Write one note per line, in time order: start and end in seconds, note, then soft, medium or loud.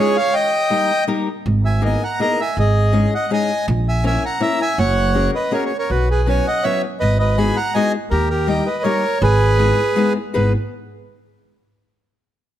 0.00 0.17 G#3 medium
0.00 0.17 C#4 medium
0.00 0.17 D#4 medium
0.00 0.17 F4 medium
0.00 0.17 G#4 loud
0.00 0.17 G#4 medium
0.00 0.17 C#5 loud
0.17 0.34 C#5 medium
0.17 0.35 F5 loud
0.33 1.05 D#5 loud
0.33 1.04 G5 loud
0.70 0.90 G3 medium
0.70 0.90 A#3 medium
0.70 0.90 D#4 medium
0.70 0.90 G4 medium
0.70 0.90 A#4 medium
1.07 1.27 G3 medium
1.07 1.27 A#3 medium
1.07 1.27 D#4 medium
1.07 1.27 G4 medium
1.07 1.28 A#4 medium
1.46 1.94 G#1 loud
1.65 1.82 E5 medium
1.65 1.84 G#5 medium
1.81 2.02 A#3 medium
1.81 2.02 B3 medium
1.81 2.02 D#4 medium
1.81 2.02 G#4 medium
1.81 2.02 A#4 medium
1.81 2.02 D#5 medium
1.85 2.04 G#5 medium
2.04 2.20 F#5 medium
2.04 2.20 A#5 medium
2.19 2.39 A#3 medium
2.19 2.39 B3 medium
2.19 2.40 D#4 medium
2.19 2.39 G#4 medium
2.19 2.40 A#4 medium
2.19 2.39 D#5 medium
2.19 2.41 A#5 loud
2.41 2.57 E5 medium
2.41 2.59 G#5 loud
2.57 3.05 G#1 loud
2.57 3.10 G#4 medium
2.57 3.14 D#5 medium
2.92 3.13 G#3 medium
2.92 3.13 C#4 medium
2.92 3.13 D#4 medium
2.92 3.13 G#4 medium
2.92 3.13 C#5 medium
3.15 3.31 D#5 medium
3.15 3.31 F#5 medium
3.30 3.50 G#3 medium
3.30 3.50 C#4 medium
3.30 3.50 D#4 medium
3.30 3.50 G#4 medium
3.30 3.50 C#5 medium
3.30 3.66 D#5 medium
3.30 3.66 G#5 loud
3.68 4.15 A#1 loud
3.89 4.04 E5 medium
3.89 4.05 G#5 medium
4.03 4.23 A#3 medium
4.03 4.23 C#4 medium
4.03 4.23 E4 medium
4.03 4.23 A#4 medium
4.03 4.23 C#5 medium
4.03 4.23 E5 medium
4.03 4.25 G#5 medium
4.25 4.41 F#5 medium
4.25 4.41 A#5 loud
4.40 4.60 A#3 medium
4.40 4.60 C#4 medium
4.40 4.60 E4 medium
4.40 4.60 A#4 medium
4.40 4.60 C#5 loud
4.40 4.59 E5 loud
4.40 4.62 A#5 loud
4.62 4.78 E5 medium
4.62 4.79 G#5 loud
4.78 5.27 F#1 loud
4.78 5.31 C#5 loud
4.78 5.31 F#5 loud
5.15 5.34 A#3 medium
5.15 5.34 C#4 medium
5.15 5.34 F#4 medium
5.15 5.34 G#4 medium
5.15 5.34 A#4 medium
5.35 5.52 B4 medium
5.35 5.53 D#5 medium
5.51 5.71 A#3 medium
5.51 5.72 C#4 medium
5.51 5.72 F#4 medium
5.51 5.72 G#4 medium
5.51 5.72 A#4 medium
5.51 5.64 A#4 medium
5.51 5.64 C#5 medium
5.66 5.77 C#5 medium
5.79 5.90 A#4 medium
5.79 5.91 C#5 medium
5.90 6.38 B1 medium
5.90 6.08 F#4 medium
5.90 6.09 B4 medium
6.11 6.27 G#4 medium
6.11 6.29 B4 medium
6.27 6.46 F#3 medium
6.27 6.46 B3 medium
6.27 6.46 C#4 medium
6.27 6.47 F#4 medium
6.27 6.47 B4 medium
6.27 6.46 C#5 medium
6.27 6.48 G#5 medium
6.47 6.64 D#5 medium
6.47 6.65 F#5 loud
6.64 6.84 F#3 medium
6.64 6.84 B3 medium
6.64 6.84 C#4 medium
6.64 6.84 F#4 medium
6.64 6.84 B4 medium
6.64 6.82 C#5 medium
6.64 6.82 E5 loud
7.00 7.50 G#1 loud
7.00 7.18 B4 medium
7.00 7.17 D#5 loud
7.19 7.37 B4 medium
7.19 7.38 D#5 medium
7.37 7.57 G#3 medium
7.37 7.57 B3 medium
7.37 7.57 D#4 medium
7.37 7.57 F#4 medium
7.37 7.57 G#4 medium
7.37 7.56 G#5 medium
7.37 7.57 B5 loud
7.56 7.74 F#5 medium
7.56 7.75 A#5 loud
7.74 7.94 G#3 medium
7.74 7.94 B3 medium
7.74 7.94 D#4 medium
7.74 7.94 F#4 medium
7.74 7.94 G#4 medium
7.74 7.92 D#5 medium
7.74 7.92 G#5 loud
8.11 8.59 D#2 loud
8.11 8.29 G4 medium
8.11 8.28 A#4 loud
8.30 8.47 G4 medium
8.30 8.48 A#4 medium
8.47 8.67 G3 medium
8.47 8.67 A#3 medium
8.47 8.67 D#4 medium
8.47 8.67 G4 medium
8.47 8.67 A#4 medium
8.47 8.64 D#5 medium
8.47 8.67 G5 loud
8.66 8.83 B4 medium
8.66 8.85 D#5 medium
8.83 9.04 G3 medium
8.83 9.04 A#3 medium
8.83 9.04 D#4 medium
8.83 9.04 G4 medium
8.83 9.19 A#4 medium
8.83 9.04 A#4 medium
8.83 9.22 C#5 loud
9.22 9.71 G#1 loud
9.22 10.13 G#4 medium
9.22 10.13 B4 loud
9.58 9.78 G#3 medium
9.58 9.78 B3 medium
9.58 9.78 D#4 medium
9.58 9.79 G#4 medium
9.58 9.79 B4 medium
9.96 10.16 G#3 medium
9.96 10.16 B3 medium
9.96 10.16 D#4 medium
9.96 10.17 G#4 medium
9.96 10.17 B4 medium
10.34 10.53 G#1 medium
10.34 10.52 B3 medium
10.34 10.52 D#4 medium
10.34 10.52 G#4 medium
10.34 10.52 B4 medium
10.34 10.53 B4 medium